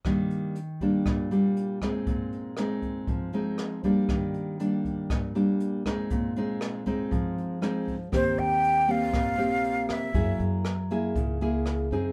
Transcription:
<<
  \new Staff \with { instrumentName = "Flute" } { \time 4/4 \key ees \major \tempo 4 = 119 r1 | r1 | r1 | r1 |
c''8 g''4 f''2 fes''8~ | fes''8 r2. r8 | }
  \new Staff \with { instrumentName = "Nylon-string guitar" } { \time 4/4 \key ees \major << { <g bes d'>4 r8 <g bes d'>4 <g bes d'>4 <aes c' ees'>8~ | <aes c' ees'>4 <aes c' ees'>4. <aes c' ees'>4 <g bes d'>8~ | <g bes d'>4 <g bes d'>4. <g bes d'>4 <aes c' ees'>8~ | <aes c' ees'>8 <aes c' ees'>4 <aes c' ees'>4. <aes c' ees'>8 r8 |
<bes c' g'>4. <bes c' g'>4 <bes c' g'>4. | <bes fes' aes'>4 r8 <bes fes' aes'>4 <bes fes' aes'>4 <c' ees' aes'>8 | } \\ { ees2 bes,2 | bes,2 f2 | ees2 bes,2 | bes,2 f2 |
ees2 bes,2 | ges2 des2 | } >> }
  \new Staff \with { instrumentName = "Upright bass" } { \clef bass \time 4/4 \key ees \major r1 | r1 | r1 | r1 |
ees,8 ees,4. bes,,4. ees,8 | ges,8 ges,4. des,4. ges,8 | }
  \new DrumStaff \with { instrumentName = "Drums" } \drummode { \time 4/4 <hh bd ss>8 hh8 hh8 <hh bd>8 <hh bd ss>8 hh8 hh8 <hh bd ss>8 | <hh bd>8 hh8 <hh ss>8 <hh bd>8 <hh bd>8 hh8 <hh ss>8 <hh bd>8 | <hh bd ss>8 hh8 hh8 <hh bd>8 <hh bd ss>8 hh8 hh8 <hh bd ss>8 | <hh bd>8 hh8 <hh ss>8 <hh bd>8 <hh bd>8 hh8 <hh ss>8 <hh bd>8 |
<hh bd ss>8 hh8 hh8 hh8 <hh bd ss>8 hh8 hh8 <hh ss>8 | <hh bd>8 hh8 <hh ss>8 hh8 <hh bd>8 hh8 <hh ss>8 hh8 | }
>>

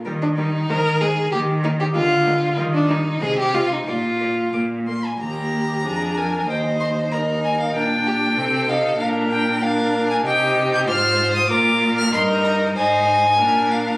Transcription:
<<
  \new Staff \with { instrumentName = "Violin" } { \time 2/4 \key ees \major \tempo 4 = 95 bes'8 bes'8 c''8 c''8 | bes'8 bes'8 bes'8 bes'8 | bes'8 bes'8 ees''8 ees''8 | d''8 d''8 d'''8 c'''16 aes''16 |
bes''4. aes''8 | g''8 c'''8 bes''8 aes''16 f''16 | g''4. f''8 | f''8 g''8 f''8. aes''16 |
g''8. g'''16 f'''8. ees'''16 | d'''8. f'''16 c'''8 bes''8 | aes''4. f''8 | }
  \new Staff \with { instrumentName = "Violin" } { \time 2/4 \key ees \major r16 d'16 ees'8 bes'8 aes'8 | g'8 ees'16 g'16 f'4 | r16 d'16 ees'8 aes'16 g'16 f'16 ees'16 | f'4 r4 |
g'4 aes'8 bes'8 | c''4 bes'4 | bes'8 g'8 a'4 | bes'4 bes'4 |
g'4 c''4 | bes'4 bes'4 | c''4 bes'4 | }
  \new Staff \with { instrumentName = "Viola" } { \time 2/4 \key ees \major g8 g8 aes8 aes8 | bes8 bes8 aes8 aes8 | g8 g8 aes8 aes8 | bes8 bes8 bes8 bes8 |
bes4 d'4 | ees'4 ees'4 | d'4 c'8 ees'8 | d'4 d'4 |
ees'4 f'4 | f'4 ees'4 | ees'4 d'4 | }
  \new Staff \with { instrumentName = "Cello" } { \clef bass \time 2/4 \key ees \major ees4 ees4 | ees4 d4 | ees4 c4 | bes,4 bes,4 |
ees,4 f,4 | ees,2 | bes,4 c4 | bes,2 |
c4 aes,4 | bes,4 g,4 | aes,4 bes,4 | }
>>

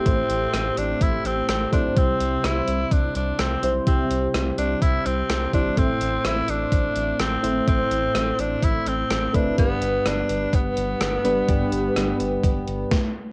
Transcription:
<<
  \new Staff \with { instrumentName = "Tenor saxophone" } { \time 4/4 \key c \major \tempo 4 = 126 c'4. d'8 e'8 c'8 c'8 d'8 | c'4 e'4 d'8 d'8 c'4 | c'4 r8 d'8 e'8 c'4 d'8 | c'4 e'8 d'4. c'4 |
c'4. d'8 e'8 c'4 d'8 | b4 d'4 b2~ | b2. r4 | }
  \new Staff \with { instrumentName = "Synth keys" } { \time 4/4 \key c \major << { <a c' e' c''>2 r4. <a c' e' c''>8 | <g c' e' c''>2 r4. <g c' e' c''>8 | <g c' e' g'>2 r4. <g c' e' c''>8 | <a c' e' c''>2 r4. <a c' e' c''>8 |
<a c' e' c''>2 r4. <a c' e' b'>8 | <g b d' b'>2 r4. <g b d' b'>8 | <g b d' g'>2 r2 | } \\ { a,4. r2 r8 | c4. r2 r8 | c4. r2 r8 | a,4. r2 r8 |
a,4. r2 r8 | g,4. r2 r8 | g,4. r2 r8 | } >> }
  \new Staff \with { instrumentName = "Analog synth bass" } { \clef bass \time 4/4 \key c \major a,,8 a,,8 a,,8 a,,8 a,,8 a,,8 a,,8 b,,8 | c,8 c,8 c,8 c,8 c,8 c,8 c,8 b,,8 | c,8 c,8 c,8 c,8 c,8 c,8 c,8 aes,,8 | a,,8 a,,8 a,,8 a,,8 a,,8 a,,8 a,,8 aes,,8 |
a,,8 a,,8 a,,8 a,,8 a,,8 a,,8 a,,8 fis,,8 | g,,8 g,,8 g,,8 g,,8 g,,8 g,,8 g,,8 fis,,8 | g,,8 g,,8 g,,8 g,,8 g,,8 g,,8 r4 | }
  \new DrumStaff \with { instrumentName = "Drums" } \drummode { \time 4/4 <hh bd>8 hh8 <hh ss>8 hh8 <hh bd>8 hh8 <hh ss>8 <hh bd>8 | <hh bd>8 hh8 <hh ss>8 hh8 <hh bd>8 hh8 <hh ss>8 hh8 | <hh bd>8 hh8 <hh ss>8 hh8 <hh bd>8 hh8 <hh ss>8 <hh bd>8 | <hh bd>8 hh8 <hh ss>8 hh8 <hh bd>8 hh8 <hh ss>8 hh8 |
<hh bd>8 hh8 <hh ss>8 hh8 <hh bd>8 hh8 <hh ss>8 <hh bd>8 | <hh bd>8 hh8 <hh ss>8 hh8 <hh bd>8 hh8 <hh ss>8 hh8 | <hh bd>8 hh8 <hh ss>8 hh8 <hh bd>8 hh8 <bd sn>4 | }
>>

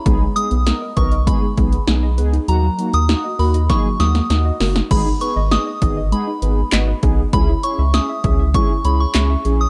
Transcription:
<<
  \new Staff \with { instrumentName = "Synth bell" } { \time 4/4 \key gis \minor \tempo 4 = 99 b''8 dis'''4 cis'''8 b''4. r8 | ais''8. dis'''8. b''8 cis'''8 dis'''4 r8 | b''8 cis'''8 dis'''4 b''4. r8 | b''8 cis'''8 dis'''4 cis'''8 b''16 cis'''4 dis'''16 | }
  \new Staff \with { instrumentName = "Synth arpeggio sound" } { \time 4/4 \key gis \minor gis16 gis16 gis16 b16 dis'16 dis''16 b'16 dis''16 gis16 gis16 gis16 b16 dis'16 dis''16 b'16 dis'16 | fis16 fis16 fis16 ais16 dis'16 dis''16 ais'16 dis''16 fis16 fis16 fis16 ais16 dis'16 dis''16 ais'16 dis'16 | gis16 dis'16 b'16 dis''16 dis''16 dis''16 dis''16 dis''16 gis16 dis'16 b'16 r16 dis''16 dis''16 gis'16 r16 | gis16 e'16 cis''16 e''16 e''16 e''16 e''16 e''16 gis16 e'16 cis''16 r16 e''16 e''16 gis'16 r16 | }
  \new Staff \with { instrumentName = "Analog polysynth" } { \time 4/4 \key gis \minor <b dis' gis'>8 <b dis' gis'>8 <b dis' ais'>8 <b dis' ais'>8 <b dis' gis'>8 <b dis' gis'>8 <b dis' gis'>8 <b dis' gis'>8 | <ais dis' fis'>8 <ais dis' fis'>8 <ais dis' fis'>8 <ais dis' fis'>8 <ais dis' gis'>8 <ais dis' fis'>8 <ais dis' fis'>8 <ais dis' fis'>8 | <b dis' gis'>8 <b dis' gis'>8 <b dis' gis'>8 <b dis' gis'>8 <b dis' gis'>8 <b dis' gis'>8 <b dis' fis'>8 <b dis' gis'>8 | <cis' e' gis'>8 <cis' e' gis'>8 <cis' e' gis'>8 <cis' e' gis'>8 <cis' e' gis'>8 <cis' e' gis'>8 <cis' e' gis'>8 <cis' e' gis'>8 | }
  \new Staff \with { instrumentName = "Analog synth bass" } { \clef bass \time 4/4 \key gis \minor b,,8 r16 b,,8 r16 b,,8. r16 b,,8 b,,8 cis,8 | dis,8 r16 dis,8 r16 dis,8. r16 dis,8 dis,8 fis,,8 | gis,,8 r16 gis,,8 r16 gis,,8. r16 gis,,8 gis,,8 b,,8 | cis,8 r16 cis,8 r16 cis,8. r16 cis,8 cis,8 ais,,8 | }
  \new DrumStaff \with { instrumentName = "Drums" } \drummode { \time 4/4 <hh bd>8 hh16 hh16 <hh sn>8 <hh bd>16 hh16 <hh bd>8 <hh bd>16 hh16 <hh sn>8 hh16 hh16 | hh8 hh16 hh16 <hh sn>8 hho16 hh16 <hh bd sn>8 <hh sn>16 <hh sn>16 <hh sn>8 <hho sn>16 <hh sn>16 | <cymc hh bd>8 hh8 <hh sn>8 <hh bd>8 hh8 hh8 <hc hh sn>8 <hh bd>8 | <hh bd>8 hh8 <hh sn>8 <hh bd>8 <hh bd>8 hh8 <hc hh sn>8 hh8 | }
>>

